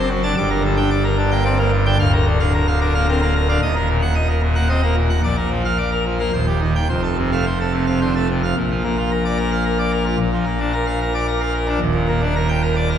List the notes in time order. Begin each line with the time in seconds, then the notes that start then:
Already playing: F#1 F#2
0.10 F#3
0.23 D4 A5
0.37 G1 G2 D5
0.50 A#4
0.64 D3
0.77 D4 G5
0.91 D5
1.04 A#4
1.18 D3 D4
1.32 A#3 G5
1.45 C4 D5
1.59 A#3 A#4
1.72 D3
1.86 D4 G5
1.99 D1 D2 F5
2.13 A#4
2.26 D3
2.40 D4 F5
2.54 A#4
2.67 F5
2.81 D4 A#4
2.95 A#3 F5
3.09 C4 A#4
3.22 A#3 F5
3.36 A#4
3.49 D4 F5
3.62 D#1 D#2 D#5
3.76 A#4
3.89 A#2
4.02 F#5
4.15 D#5
4.29 A#4
4.42 A#2
4.55 A#3 F#5
4.69 C4 D#5
4.83 A#3 A#4
4.96 A#2
5.10 F#5
5.23 A#1 A#2 D5
5.38 A#4
5.51 F3
5.65 F5
5.78 D5
5.92 A#4
6.06 F3
6.20 A#3 F5
6.33 D#1 D#2 C5
6.48 G4
6.61 D#3
6.76 G5
6.89 F1 F2 C5
7.03 A4
7.18 C3
7.32 A3 F5
7.46 C5
7.60 A4
7.73 C3 A3
7.87 C3 F5
8.01 D3 C5
8.15 A3 A4
8.29 C3
8.43 F5
8.57 A#1 A#2
8.70 F3
8.84 A#3
8.98 F4
9.11 A#4
9.25 D5
9.38 A#4
9.52 F5
9.65 A#4
9.79 D5
9.92 A#4
10.06 F4
10.20 A#1 A#2
10.32 F3
10.46 A#3
10.60 D4
10.73 A#4
10.87 F5
11.01 A#4
11.14 D5
11.28 A#4
11.41 F5
11.54 A#4
11.68 D4
11.81 D#1 D#2
11.95 A#2
12.08 A#3
12.22 D4
12.36 A#4
12.49 G5
12.62 A#4
12.76 D5
12.89 A#4